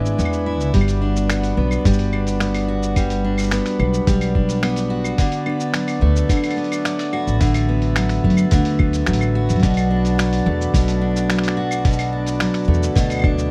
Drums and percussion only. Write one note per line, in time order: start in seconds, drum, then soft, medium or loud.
0.06 shaker medium
0.19 shaker medium
0.25 claves medium
0.33 shaker soft
0.60 shaker medium
0.74 kick loud
0.74 open hi-hat medium
0.81 claves medium
0.88 open hi-hat soft
0.88 shaker soft
1.16 shaker medium
1.30 finger snap medium
1.30 open hi-hat medium
1.30 claves medium
1.30 shaker medium
1.43 open hi-hat soft
1.43 shaker soft
1.71 claves medium
1.71 shaker medium
1.85 kick loud
1.85 open hi-hat medium
1.85 shaker medium
1.93 shaker soft
1.99 open hi-hat soft
2.13 claves medium
2.27 open hi-hat soft
2.27 shaker medium
2.40 finger snap medium
2.40 open hi-hat medium
2.40 shaker medium
2.54 open hi-hat soft
2.54 claves medium
2.54 shaker soft
2.83 shaker medium
2.96 kick loud
2.96 open hi-hat medium
2.96 claves medium
2.96 shaker soft
3.10 open hi-hat soft
3.10 shaker soft
3.38 claves medium
3.38 shaker medium
3.41 shaker soft
3.43 shaker soft
3.45 shaker soft
3.48 shaker soft
3.50 finger snap medium
3.50 open hi-hat medium
3.50 shaker soft
3.52 shaker soft
3.66 finger snap soft
3.66 open hi-hat soft
3.66 shaker soft
3.80 claves medium
3.94 shaker medium
4.07 kick loud
4.07 open hi-hat medium
4.07 shaker medium
4.21 open hi-hat soft
4.21 claves medium
4.21 shaker soft
4.35 kick medium
4.49 open hi-hat soft
4.49 shaker medium
4.63 finger snap medium
4.63 open hi-hat medium
4.63 claves medium
4.76 open hi-hat soft
4.76 shaker medium
5.04 claves medium
5.04 shaker medium
5.18 kick loud
5.18 open hi-hat medium
5.18 shaker soft
5.32 open hi-hat soft
5.32 shaker soft
5.46 claves medium
5.60 shaker medium
5.74 finger snap loud
5.74 open hi-hat medium
5.74 shaker medium
5.88 open hi-hat soft
5.88 claves medium
5.88 shaker soft
6.16 shaker medium
6.29 kick loud
6.29 open hi-hat medium
6.29 claves soft
6.29 shaker medium
6.37 claves soft
6.44 open hi-hat soft
6.44 claves medium
6.44 shaker soft
6.51 open hi-hat soft
6.51 claves medium
6.58 open hi-hat soft
6.64 open hi-hat soft
6.72 open hi-hat soft
6.72 claves medium
6.72 shaker medium
6.85 finger snap medium
6.85 open hi-hat medium
6.85 shaker soft
6.99 open hi-hat soft
6.99 shaker soft
7.13 claves medium
7.27 shaker medium
7.41 kick loud
7.41 open hi-hat medium
7.41 shaker soft
7.54 open hi-hat soft
7.54 claves medium
7.54 shaker soft
7.82 open hi-hat soft
7.96 finger snap loud
7.96 open hi-hat medium
7.96 claves medium
7.96 shaker medium
8.09 finger snap soft
8.09 open hi-hat soft
8.09 shaker soft
8.24 kick medium
8.30 open hi-hat soft
8.37 claves medium
8.37 shaker medium
8.51 kick loud
8.51 open hi-hat medium
8.51 shaker medium
8.65 open hi-hat soft
8.79 kick loud
8.79 claves medium
8.93 open hi-hat soft
8.93 shaker medium
9.06 finger snap medium
9.06 shaker medium
9.13 open hi-hat medium
9.21 claves medium
9.21 shaker soft
9.49 open hi-hat soft
9.49 shaker medium
9.53 open hi-hat soft
9.56 open hi-hat soft
9.60 kick loud
9.60 open hi-hat soft
9.63 open hi-hat medium
9.63 shaker medium
9.67 open hi-hat soft
9.70 open hi-hat soft
9.74 open hi-hat soft
9.77 open hi-hat soft
9.77 claves medium
9.77 shaker soft
10.05 open hi-hat soft
10.05 shaker medium
10.19 finger snap loud
10.19 open hi-hat medium
10.19 shaker medium
10.33 open hi-hat medium
10.33 shaker soft
10.61 shaker medium
10.74 kick loud
10.74 open hi-hat medium
10.74 shaker medium
10.88 open hi-hat soft
10.88 shaker soft
11.16 shaker medium
11.30 finger snap medium
11.30 open hi-hat medium
11.30 shaker medium
11.39 finger snap medium
11.44 open hi-hat medium
11.44 shaker soft
11.48 finger snap medium
11.71 claves medium
11.71 shaker medium
11.85 kick loud
11.85 open hi-hat medium
11.92 shaker medium
11.99 open hi-hat soft
11.99 claves medium
11.99 shaker soft
12.26 open hi-hat soft
12.26 shaker medium
12.40 finger snap loud
12.40 open hi-hat medium
12.40 shaker medium
12.54 finger snap soft
12.54 open hi-hat soft
12.54 shaker soft
12.64 shaker soft
12.74 shaker soft
12.83 shaker medium
12.96 kick loud
12.96 open hi-hat medium
12.96 shaker medium
13.10 open hi-hat soft
13.10 claves soft
13.10 shaker soft
13.12 claves soft
13.14 claves soft
13.17 claves medium
13.19 claves medium
13.22 kick loud
13.22 claves medium
13.24 claves medium
13.39 shaker medium